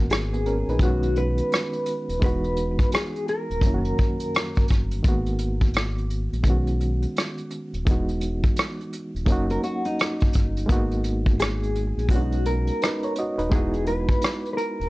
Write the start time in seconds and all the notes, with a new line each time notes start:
Already playing: G#1 D#3 G#3 A#3 B3 C#4 F#4 A#4
0.10 G#4, cross-stick, closed hi-hat
0.34 B3 G#4, closed hi-hat
0.46 C#4 A#4, closed hi-hat
0.68 A#1 D#4 B4, closed hi-hat
0.79 B1 D#3 G#3 B3 F#4, kick, closed hi-hat
0.84 C#4 F#4
1.03 closed hi-hat
1.16 B4, closed hi-hat
1.38 closed hi-hat
1.52 cross-stick, closed hi-hat
1.73 closed hi-hat
1.86 closed hi-hat
2.09 D#1, closed hi-hat
2.20 E1 E3 G#3 B3, kick, closed hi-hat
2.24 D#4 F#4 B4
2.44 closed hi-hat
2.57 closed hi-hat
2.79 kick, closed hi-hat
2.92 G#4, cross-stick, closed hi-hat
3.16 closed hi-hat
3.28 A#4, closed hi-hat
3.50 D#1, closed hi-hat
3.61 F#1 F#2 D#3 F#3 A#3, kick, closed hi-hat
3.66 C#4 E4
3.74 F#4
3.85 closed hi-hat
3.98 kick, closed hi-hat
4.20 closed hi-hat
4.34 cross-stick, closed hi-hat
4.55 kick, closed hi-hat
4.68 G1, kick, cross-stick, closed hi-hat
4.91 closed hi-hat
5.03 G#1 D#3 G#3 A#3, kick, closed hi-hat
5.07 B3 F#4
5.26 closed hi-hat
5.39 closed hi-hat
5.61 kick, closed hi-hat
5.74 cross-stick, closed hi-hat
5.98 closed hi-hat
6.10 closed hi-hat
6.32 A#1, closed hi-hat
6.43 B1 D#3 G#3 B3, kick, closed hi-hat
6.48 C#4 F#4
6.67 closed hi-hat
6.80 closed hi-hat
7.02 closed hi-hat
7.16 cross-stick, closed hi-hat
7.38 closed hi-hat
7.51 closed hi-hat
7.73 D#1, closed hi-hat
7.85 E1 E3 G#3 B3, kick, closed hi-hat
7.90 D#4 F#4
8.09 closed hi-hat
8.21 closed hi-hat
8.44 kick, closed hi-hat
8.56 cross-stick, closed hi-hat
8.81 closed hi-hat
8.93 closed hi-hat
9.15 D#1, closed hi-hat
9.26 F#1 F#3 A#3 C#4, kick, closed hi-hat
9.30 D#4 F#4
9.50 A#4, closed hi-hat
9.63 F#4, closed hi-hat
9.85 D#4, closed hi-hat
9.99 cross-stick, closed hi-hat
10.20 kick, closed hi-hat
10.33 G1, kick, closed hi-hat
10.57 closed hi-hat
10.66 G#1 G#3 A#3 B3, kick, closed hi-hat
10.71 D#4 F#4
10.91 closed hi-hat
11.04 closed hi-hat
11.26 kick, closed hi-hat
11.39 G#4, cross-stick, closed hi-hat
11.63 closed hi-hat
11.75 closed hi-hat
11.97 A#1, closed hi-hat
12.09 B1 G#3 B3 F#4, kick, closed hi-hat
12.13 C#4 D4 F#4
12.21 D#4
12.32 closed hi-hat
12.45 A#4, closed hi-hat
12.67 closed hi-hat
12.82 D#4 B4, cross-stick, closed hi-hat
13.03 C#5, closed hi-hat
13.16 F#4 D#5, closed hi-hat
13.38 D#1 D#4 B4, closed hi-hat
13.49 E1 G#3 B3 D#4 G#4, kick, closed hi-hat
13.54 E4 F#4
13.74 closed hi-hat
13.86 B4, closed hi-hat
14.09 kick, closed hi-hat
14.22 cross-stick, closed hi-hat
14.45 closed hi-hat
14.53 A#4 B4
14.58 closed hi-hat
14.80 D#1, closed hi-hat